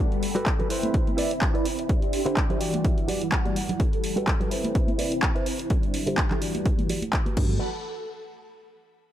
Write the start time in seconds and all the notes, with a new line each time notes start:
Already playing: G3 A3 B3 D4 F#4 F#5
0.00 G3 A4 B5
0.12 closed hi-hat
0.23 open hi-hat, maracas
0.35 G3 F#4 A4 B4, closed hi-hat
0.46 kick, clap, closed hi-hat
0.59 G3 F#4 A4 B4, closed hi-hat, low conga, maracas
0.69 C4 E4 B4 C5, open hi-hat
0.83 closed hi-hat, high conga, maracas
0.94 kick, closed hi-hat
1.07 closed hi-hat, high conga, maracas
1.17 E4 B4 D5, open hi-hat
1.31 closed hi-hat
1.41 muted clean electric guitar stroke, kick, clap, closed hi-hat
1.54 E4 B4 D5, closed hi-hat
1.65 open hi-hat
1.78 muted clean electric guitar stroke, closed hi-hat
1.89 D4 G4 E5 C6, kick, closed hi-hat
2.02 closed hi-hat
2.13 open hi-hat, maracas
2.26 D3 E4 G4 C5, closed hi-hat
2.37 kick, clap, closed hi-hat
2.49 D3 E4 G4 C5, closed hi-hat, low conga, maracas
2.60 E3 G3 F#4 G4 D5 F#5 D6, open hi-hat, maracas
2.74 closed hi-hat, high conga, maracas
2.85 E5, kick, closed hi-hat
2.98 closed hi-hat
3.08 E3 F#4 G4 D5, open hi-hat, low conga, maracas
3.21 closed hi-hat
3.32 F#5, muted clean electric guitar stroke, kick, clap, closed hi-hat
3.45 E3 F#4 G4 D5, closed hi-hat, high conga, maracas
3.56 F#5, open hi-hat, maracas
3.69 muted clean electric guitar stroke, closed hi-hat, low conga, maracas
3.80 G3 A4 B5, kick, closed hi-hat
3.93 closed hi-hat, maracas
4.04 open hi-hat
4.16 G3 F#4 A4 B4, closed hi-hat
4.27 kick, clap, closed hi-hat
4.40 G3 F#4 A4 B4, closed hi-hat, low conga, maracas
4.50 C4 E4 B4 C5, open hi-hat
4.64 closed hi-hat, high conga, maracas
4.75 kick, closed hi-hat
4.87 closed hi-hat, high conga, maracas
4.98 E4 B4 D5, open hi-hat, maracas
5.12 closed hi-hat, maracas
5.22 muted clean electric guitar stroke, kick, clap, closed hi-hat
5.35 E4 B4 C5, closed hi-hat
5.46 open hi-hat
5.59 muted clean electric guitar stroke, closed hi-hat
5.70 G3 D4 E5 C6, kick, closed hi-hat
5.83 closed hi-hat
5.94 open hi-hat
6.07 D3 E4 G4 C5, closed hi-hat
6.18 kick, clap, closed hi-hat
6.30 D3 E4 G4 A4, clap, closed hi-hat, low conga, maracas
6.41 E3 F#4 G4 D5 F#5 D6, open hi-hat
6.55 closed hi-hat, high conga, maracas
6.66 kick, closed hi-hat
6.78 closed hi-hat, high conga, maracas
6.89 E3 F#4 G4 D5, open hi-hat, low conga, maracas
7.02 closed hi-hat, high conga, maracas
7.13 kick, clap, closed hi-hat
7.25 E3 F#4 G4 B4, closed hi-hat, high conga, maracas
7.36 G2 G3 A3 B3 D4 F#4 A4 F#5 B5, kick, crash
7.49 low conga, maracas